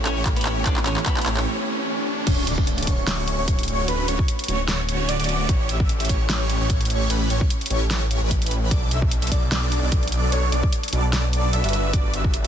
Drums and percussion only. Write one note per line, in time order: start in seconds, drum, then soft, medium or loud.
0.05 clap medium
0.05 closed hi-hat medium
0.25 kick loud
0.25 clap medium
0.25 closed hi-hat medium
0.36 closed hi-hat soft
0.41 closed hi-hat medium
0.46 clap medium
0.46 closed hi-hat medium
0.66 kick loud
0.66 clap medium
0.66 closed hi-hat medium
0.76 clap medium
0.86 clap loud
0.86 closed hi-hat medium
0.97 clap medium
1.06 kick loud
1.06 clap medium
1.06 closed hi-hat medium
1.17 clap medium
1.17 closed hi-hat soft
1.22 closed hi-hat medium
1.26 clap loud
1.26 closed hi-hat medium
1.37 clap medium
2.27 kick loud
2.27 closed hi-hat medium
2.27 crash loud
2.47 closed hi-hat medium
2.58 kick loud
2.67 closed hi-hat medium
2.78 closed hi-hat medium
2.83 closed hi-hat medium
2.87 kick medium
2.87 closed hi-hat medium
3.07 snare loud
3.07 closed hi-hat medium
3.28 closed hi-hat medium
3.48 kick loud
3.48 closed hi-hat medium
3.59 closed hi-hat medium
3.63 closed hi-hat medium
3.68 closed hi-hat medium
3.88 closed hi-hat medium
4.08 closed hi-hat medium
4.19 kick loud
4.28 closed hi-hat medium
4.39 closed hi-hat soft
4.44 closed hi-hat medium
4.48 closed hi-hat medium
4.68 snare loud
4.68 closed hi-hat medium
4.89 closed hi-hat medium
5.09 closed hi-hat medium
5.20 closed hi-hat soft
5.24 closed hi-hat medium
5.29 closed hi-hat medium
5.49 kick loud
5.49 closed hi-hat medium
5.69 closed hi-hat medium
5.80 kick loud
5.89 closed hi-hat medium
6.00 closed hi-hat soft
6.05 closed hi-hat medium
6.09 kick medium
6.09 closed hi-hat medium
6.29 snare loud
6.29 closed hi-hat medium
6.50 closed hi-hat medium
6.70 kick loud
6.70 closed hi-hat medium
6.81 closed hi-hat soft
6.85 closed hi-hat medium
6.90 closed hi-hat medium
7.10 closed hi-hat medium
7.30 closed hi-hat medium
7.41 kick loud
7.50 closed hi-hat medium
7.61 closed hi-hat soft
7.66 closed hi-hat medium
7.70 closed hi-hat medium
7.91 snare loud
7.91 closed hi-hat medium
8.11 closed hi-hat medium
8.31 kick medium
8.31 closed hi-hat medium
8.42 closed hi-hat soft
8.46 closed hi-hat medium
8.51 closed hi-hat medium
8.71 kick loud
8.71 closed hi-hat medium
8.91 closed hi-hat medium
9.02 kick loud
9.11 closed hi-hat medium
9.22 closed hi-hat soft
9.27 closed hi-hat medium
9.32 kick medium
9.32 closed hi-hat medium
9.52 snare loud
9.52 closed hi-hat medium
9.72 closed hi-hat medium
9.92 kick loud
9.92 closed hi-hat medium
10.03 closed hi-hat soft
10.07 closed hi-hat medium
10.12 closed hi-hat medium
10.32 closed hi-hat medium
10.52 closed hi-hat medium
10.63 kick loud
10.72 closed hi-hat medium
10.83 closed hi-hat soft
10.88 closed hi-hat medium
10.93 closed hi-hat medium
11.13 snare loud
11.13 closed hi-hat medium
11.33 closed hi-hat medium
11.53 closed hi-hat medium
11.64 closed hi-hat soft
11.69 closed hi-hat medium
11.73 closed hi-hat medium
11.93 kick loud
11.93 closed hi-hat medium
12.14 closed hi-hat medium
12.24 kick loud
12.34 closed hi-hat medium